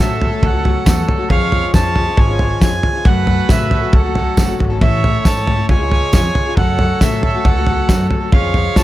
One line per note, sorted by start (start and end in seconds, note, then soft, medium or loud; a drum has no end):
0.00 0.20 F#2 medium
0.00 0.31 A2 loud
0.00 0.20 C#3 medium
0.00 0.18 F#3 medium
0.00 1.29 F#3 medium
0.00 0.19 A3 medium
0.00 5.66 C#4 medium
0.00 0.20 F#4 medium
0.00 0.86 A4 loud
0.00 1.29 A4 medium
0.00 0.21 A4 medium
0.00 0.45 E5 medium
0.19 0.31 F#3 medium
0.19 0.31 A3 medium
0.19 0.30 F#4 medium
0.19 0.29 A4 medium
0.19 floor tom loud
0.31 0.54 F#3 medium
0.31 0.53 A3 medium
0.31 0.52 F#4 medium
0.31 0.51 A4 medium
0.43 0.76 C#2 loud
0.43 1.06 F#5 medium
0.43 kick loud
0.43 floor tom loud
0.52 0.62 F#3 soft
0.52 0.63 A3 medium
0.52 0.64 F#4 medium
0.52 0.64 A4 medium
0.63 0.84 F#3 medium
0.63 0.85 A3 medium
0.63 0.85 F#4 medium
0.63 0.86 A4 medium
0.63 floor tom medium
0.84 1.03 E2 loud
0.84 0.96 F#2 medium
0.84 0.97 C#3 medium
0.84 0.97 F#3 loud
0.84 0.96 A3 medium
0.84 0.95 F#4 medium
0.84 1.32 A4 loud
0.84 0.94 A4 loud
0.84 kick loud
0.84 snare loud
0.84 tambourine loud
0.95 1.20 F#3 medium
0.95 1.19 A3 medium
0.95 1.18 F#4 medium
0.95 1.16 A4 medium
1.09 floor tom loud
1.18 1.28 F#3 medium
1.18 1.29 A3 medium
1.18 1.30 F#4 medium
1.18 1.29 A4 medium
1.29 1.63 F2 loud
1.29 1.50 F3 medium
1.29 3.04 F3 medium
1.29 3.04 G#3 medium
1.29 1.51 C#4 medium
1.29 1.52 F4 loud
1.29 1.52 G#4 loud
1.29 1.74 C#5 loud
1.29 1.71 F5 loud
1.29 kick loud
1.29 floor tom loud
1.51 1.72 F3 medium
1.51 1.73 C#4 medium
1.51 1.73 F4 medium
1.51 1.74 G#4 medium
1.51 floor tom medium
1.73 2.07 F2 loud
1.73 1.93 F3 medium
1.73 1.94 C#4 medium
1.73 1.95 F4 medium
1.73 1.96 G#4 loud
1.73 2.75 C#5 loud
1.73 2.19 A5 loud
1.73 kick loud
1.73 snare loud
1.73 tambourine medium
1.94 2.06 F3 medium
1.94 2.07 C#4 medium
1.94 2.06 F4 medium
1.94 2.04 G#4 medium
1.94 floor tom medium
2.06 2.29 C#4 medium
2.06 2.28 F4 soft
2.06 2.27 G#4 medium
2.17 2.51 G#1 loud
2.17 2.61 G#5 medium
2.17 kick loud
2.17 floor tom loud
2.28 2.39 C#4 soft
2.28 2.40 F4 soft
2.28 2.39 G#4 medium
2.39 2.59 F3 medium
2.39 2.60 C#4 medium
2.39 2.61 F4 medium
2.39 2.62 G#4 medium
2.39 floor tom medium
2.60 2.78 F2 loud
2.60 2.72 F3 medium
2.60 2.73 C#4 loud
2.60 2.72 F4 loud
2.60 2.70 G#4 medium
2.60 3.08 G#5 loud
2.60 kick loud
2.60 snare loud
2.60 tambourine loud
2.71 2.95 C#4 soft
2.71 2.94 F4 soft
2.71 2.93 G#4 medium
2.83 floor tom loud
2.94 3.06 C#4 soft
2.94 3.06 F4 medium
2.94 3.05 G#4 medium
3.05 3.27 F#2 medium
3.05 3.39 F#2 loud
3.05 3.27 C#3 medium
3.05 4.80 F#3 medium
3.05 3.26 F#3 medium
3.05 3.27 A3 medium
3.05 3.28 F#4 medium
3.05 4.80 A4 medium
3.05 3.28 A4 medium
3.05 3.95 B4 loud
3.05 3.51 F#5 loud
3.05 kick loud
3.05 floor tom loud
3.27 3.48 F#3 medium
3.27 3.49 A3 medium
3.27 3.49 F#4 medium
3.27 3.49 A4 medium
3.27 floor tom medium
3.48 3.71 F#2 medium
3.48 3.82 A2 loud
3.48 3.71 C#3 medium
3.48 3.69 F#3 medium
3.48 3.70 A3 medium
3.48 3.71 F#4 loud
3.48 3.72 A4 medium
3.48 3.95 E5 medium
3.48 kick loud
3.48 snare loud
3.48 tambourine medium
3.70 3.82 F#3 medium
3.70 3.82 A3 medium
3.70 3.82 F#4 medium
3.70 3.80 A4 medium
3.70 floor tom loud
3.82 4.06 F#3 soft
3.82 4.05 A3 soft
3.82 4.04 F#4 medium
3.82 4.02 A4 medium
3.93 4.26 C#2 medium
3.93 4.60 A4 loud
3.93 4.56 F#5 medium
3.93 kick loud
3.93 floor tom loud
4.04 4.15 F#3 medium
4.04 4.16 A3 medium
4.04 4.16 F#4 medium
4.04 4.15 A4 medium
4.15 4.37 F#3 medium
4.15 4.37 A3 medium
4.15 4.38 F#4 medium
4.15 4.38 A4 medium
4.15 floor tom medium
4.37 4.57 F#1 medium
4.37 4.48 F#2 medium
4.37 4.49 C#3 medium
4.37 4.49 F#3 medium
4.37 4.48 A3 medium
4.37 4.48 F#4 medium
4.37 4.46 A4 medium
4.37 kick loud
4.37 snare loud
4.37 tambourine loud
4.48 4.72 F#3 soft
4.48 4.71 A3 soft
4.48 4.70 F#4 medium
4.48 4.69 A4 medium
4.59 4.79 G#1 medium
4.59 floor tom loud
4.70 4.82 F#3 medium
4.70 4.81 A3 soft
4.70 4.82 F#4 medium
4.70 4.81 A4 medium
4.81 5.14 A1 loud
4.81 5.03 A2 medium
4.81 5.04 E3 medium
4.81 5.01 A3 medium
4.81 5.02 C#4 medium
4.81 5.69 E4 medium
4.81 5.03 E4 medium
4.81 5.69 A4 medium
4.81 5.04 A4 medium
4.81 5.66 C#5 loud
4.81 5.27 E5 loud
4.81 kick loud
4.81 floor tom loud
5.03 5.24 A3 medium
5.03 5.25 C#4 medium
5.03 5.25 E4 medium
5.03 5.26 A4 medium
5.03 floor tom medium
5.24 5.58 G#2 loud
5.24 5.47 A2 medium
5.24 5.47 E3 medium
5.24 5.46 A3 medium
5.24 5.47 C#4 medium
5.24 5.48 E4 medium
5.24 5.48 A4 medium
5.24 5.66 A5 loud
5.24 kick loud
5.24 snare loud
5.24 tambourine loud
5.47 5.58 A3 medium
5.47 5.59 C#4 medium
5.47 5.58 E4 medium
5.47 5.57 A4 medium
5.47 floor tom medium
5.58 5.69 A3 soft
5.58 5.69 C#4 medium
5.58 5.70 E4 medium
5.58 5.69 A4 medium
5.69 6.02 C#2 loud
5.69 5.80 C#3 medium
5.69 6.57 C#3 medium
5.69 5.80 G#3 medium
5.69 6.57 G#3 medium
5.69 5.81 C#4 medium
5.69 6.57 F4 medium
5.69 5.79 F4 medium
5.69 5.78 G#4 medium
5.69 6.57 C#5 loud
5.69 5.91 G#5 medium
5.69 kick loud
5.69 floor tom loud
5.79 5.89 C#4 soft
5.79 5.90 F4 medium
5.79 5.90 G#4 medium
5.89 6.11 G#3 medium
5.89 6.12 C#4 medium
5.89 6.13 F4 medium
5.89 6.13 G#4 medium
5.89 6.12 G#5 loud
5.89 floor tom medium
6.12 6.30 F2 loud
6.12 6.24 C#3 medium
6.12 6.24 G#3 medium
6.12 6.24 C#4 loud
6.12 6.24 F4 medium
6.12 6.22 G#4 medium
6.12 6.54 G#5 loud
6.12 kick loud
6.12 snare loud
6.12 tambourine loud
6.23 6.47 C#4 soft
6.23 6.46 F4 medium
6.23 6.45 G#4 medium
6.35 floor tom loud
6.46 6.58 C#4 soft
6.46 6.58 F4 medium
6.46 6.57 G#4 medium
6.56 6.79 F#2 medium
6.56 6.90 F#2 loud
6.56 6.79 C#3 medium
6.56 8.31 F#3 medium
6.56 6.78 F#3 medium
6.56 6.79 A3 medium
6.56 8.84 C#4 medium
6.56 6.80 F#4 loud
6.56 8.36 A4 loud
6.56 8.31 A4 medium
6.56 6.80 A4 medium
6.56 7.03 F#5 loud
6.56 kick loud
6.56 floor tom loud
6.79 7.01 F#3 medium
6.79 7.01 A3 medium
6.79 7.02 F#4 medium
6.79 7.02 A4 medium
6.79 floor tom loud
7.01 7.23 F#2 medium
7.01 7.34 A2 loud
7.01 7.23 C#3 medium
7.01 7.22 F#3 medium
7.01 7.23 A3 medium
7.01 7.24 F#4 medium
7.01 7.24 A4 loud
7.01 7.22 E5 loud
7.01 kick loud
7.01 snare loud
7.01 tambourine loud
7.23 7.34 F#3 medium
7.23 7.35 A3 medium
7.23 7.34 F#4 medium
7.23 7.33 A4 medium
7.23 7.46 E5 medium
7.23 floor tom loud
7.34 7.58 F#3 soft
7.34 7.57 A3 soft
7.34 7.56 F#4 medium
7.34 7.55 A4 medium
7.45 7.78 C#2 loud
7.45 8.07 F#5 medium
7.45 kick loud
7.45 floor tom loud
7.56 7.66 F#3 soft
7.56 7.67 A3 medium
7.56 7.68 F#4 medium
7.56 7.67 A4 medium
7.67 7.88 F#3 medium
7.67 7.89 A3 medium
7.67 7.89 F#4 medium
7.67 7.89 A4 medium
7.67 floor tom medium
7.88 8.00 F#2 medium
7.88 8.05 F#2 loud
7.88 8.00 C#3 medium
7.88 8.00 F#3 loud
7.88 8.01 A3 medium
7.88 8.00 F#4 loud
7.88 7.99 A4 loud
7.88 kick loud
7.88 snare loud
7.88 tambourine loud
8.00 8.23 F#3 medium
8.00 8.22 A3 medium
8.00 8.21 F#4 medium
8.00 8.19 A4 medium
8.11 floor tom medium
8.21 8.32 F#3 soft
8.21 8.33 A3 medium
8.21 8.33 F#4 medium
8.21 8.32 A4 medium
8.32 8.66 F2 loud
8.32 8.84 F3 medium
8.32 8.52 F3 medium
8.32 8.84 G#3 loud
8.32 8.54 C#4 loud
8.32 8.55 F4 medium
8.32 8.56 G#4 medium
8.32 8.84 C#5 loud
8.32 8.78 F5 loud
8.32 kick loud
8.32 floor tom loud
8.54 8.75 F3 medium
8.54 8.76 C#4 medium
8.54 8.76 F4 medium
8.54 8.77 G#4 medium
8.54 floor tom loud
8.76 8.84 F2 loud
8.76 8.84 F3 medium
8.76 8.84 C#4 medium
8.76 8.84 F4 medium
8.76 8.84 G#4 loud
8.76 8.84 A5 loud
8.76 kick loud
8.76 snare loud
8.76 tambourine loud